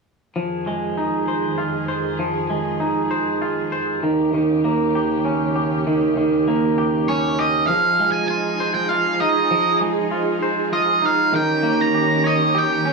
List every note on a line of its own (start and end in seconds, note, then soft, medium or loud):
0.35 4.00 F2 soft
0.35 3.99 D#3 soft
0.35 1.89 F3 soft
0.35 3.99 G#4 soft
0.67 2.20 G#3 soft
0.97 2.80 D#4 soft
1.28 1.87 C5 soft
1.58 3.11 F4 soft
1.88 3.09 C5 soft
2.19 3.72 F3 soft
2.50 4.03 G#3 soft
2.80 5.25 D#4 soft
3.11 3.71 C5 soft
3.42 4.03 F4 soft
3.72 4.03 C5 soft
4.02 7.65 D#2 soft
4.02 7.65 C#3 soft
4.02 4.33 D#3 soft
4.02 7.65 G4 soft
4.34 5.86 D#3 soft
4.65 6.17 A#3 soft
4.95 5.54 G4 soft
5.25 6.78 C#4 soft
5.56 6.77 G4 soft
5.87 6.16 D#3 soft
6.17 7.69 D#3 soft
6.48 7.69 A#3 soft
6.78 7.38 G4 soft
7.08 7.70 C#4 soft
7.08 7.40 C#5 soft
7.39 7.69 G4 soft
7.39 7.67 D#5 soft
7.67 9.21 F3 soft
7.67 11.31 F3 soft
7.67 11.31 D#4 soft
7.67 11.30 G#4 soft
7.67 8.11 F5 medium
8.00 9.52 G#3 soft
8.12 8.27 G#5 medium
8.28 8.89 F4 soft
8.28 8.74 G#5 medium
8.60 10.13 C5 soft
8.74 8.89 G5 medium
8.89 10.10 F4 soft
8.89 9.21 F5 soft
9.20 10.76 D#4 soft
9.20 9.78 D#5 soft
9.51 11.03 F3 soft
9.81 11.34 G#3 soft
10.11 10.71 F4 soft
10.42 11.34 C5 soft
10.73 11.34 F4 soft
10.73 11.05 D#5 soft
11.02 12.27 D#4 soft
11.02 11.35 F5 soft
11.33 12.86 D#3 soft
11.33 12.93 D#3 soft
11.33 12.93 C#4 soft
11.33 12.93 G4 soft
11.33 11.82 G5 medium
11.63 12.93 A#3 soft
11.81 12.27 A#5 medium
11.94 12.53 G4 soft
12.24 12.93 C#5 soft
12.24 12.57 D#5 soft
12.55 12.93 G4 soft
12.55 12.93 G5 medium
12.85 12.93 C#4 soft